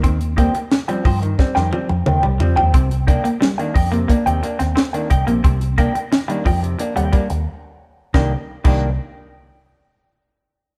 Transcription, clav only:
\new Staff \with { instrumentName = "Clav" } { \time 4/4 \key c \minor \tempo 4 = 89 ees16 r16 <g c'>16 r8 <f g c'>16 r16 ees16 <g c'>16 ees16 <g c'>16 r16 ees16 r16 <f g c'>16 r16 | c16 r16 <bes d'>16 r8 <ees bes d'>16 r16 c16 <bes d'>16 c16 <bes d'>16 r8 <ees bes d'>16 r16 c16 | c16 r16 <bes d'>16 r8 <ees bes d'>16 r16 c16 <bes d'>16 c16 <bes d'>16 r4 r16 | <ees bes d'>16 r8 <ees bes d'>8 r2 r8. | }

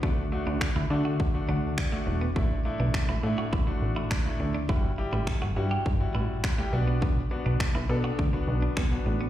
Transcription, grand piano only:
\new Staff \with { instrumentName = "Grand piano" } { \time 4/4 \key b \minor \tempo 4 = 103 << { r4. a''8 fis''8 fis''8 d''4 | r1 | r2. b''8 d''8 | r1 | } \\ { <a d' fis'>16 r16 <a d' fis'>8. r16 <a d' fis'>8 r16 <a d' fis'>8. r16 <a d' fis'>8 r16 | <a d' e'>16 r16 <a d' e'>8. r16 <a d' e'>8 r16 <a d' fis'>8. r16 <a d' e'>8 r16 | <g e' fis'>16 r16 <g e' g'>8. r16 <g e' fis'>8 r16 <g e' fis'>8. r16 <g e' g'>16 <b d' fis'>8~ | <b d' fis'>16 r16 <b d' fis'>8. r16 <b d' a'>8 r16 <b d' fis'>8. r16 <b d' fis'>8 r16 | } >> }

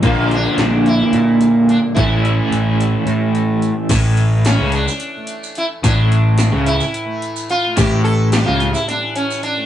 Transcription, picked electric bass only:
\new Staff \with { instrumentName = "Picked electric bass" } { \clef bass \time 7/8 \tempo 4 = 108 bes,,4 bes,,4 bes,4. | a,,4 a,,4 a,4. | a,,4~ a,,16 cis,8 r4. r16 | a,,4~ a,,16 cis,8 r4. r16 |
a,,4~ a,,16 cis,8 r4. r16 | }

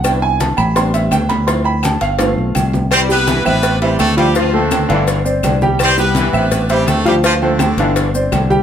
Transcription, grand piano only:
\new Staff \with { instrumentName = "Grand piano" } { \time 4/4 \key c \major \tempo 4 = 167 << { g''8 aes''8 a''8 b''8 c'''8 e''8 g''8 b''8 | c'''8 b''8 a''8 f''2~ f''16 r16 | r8 <g g' g''>4 <c' b' e''>4 <c' c'' e''>4 <f f' f''>8 | <f f' f''>8 <a a' c''>4 <d d' f''>4 <c' c'' d''>4 <g g' g''>8~ |
<g g' g''>8 <g g' g''>4 <c' b' e''>4 <c' c'' e''>4 <f f' f''>8 | <f f' f''>8 <a a' c''>4 <d d' f''>4 <c' c'' d''>4 <g g' g''>8 | } \\ { <b d' e'>4. r8 <g b c' d'>2 | <f c' e'>8 r4. <a c' f'>4. r8 | r1 | r1 |
r1 | r1 | } >> }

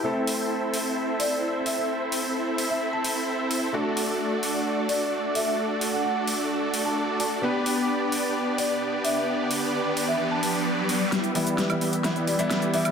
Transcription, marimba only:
\new Staff \with { instrumentName = "Marimba" } { \time 4/4 \key g \major \tempo 4 = 130 r2 r8 d''4 e''16 e''16 | r4. r16 e''16 r16 a''16 r4. | r2 r8 d''4 e''16 e''16 | r8. fis''16 fis''16 r4. a''8. a''8 |
r2 r8 d''4 e''16 e''16 | r4. r16 e''16 r16 a''16 a''16 r4 r16 | r2 r8 d''4 e''16 e''16 | }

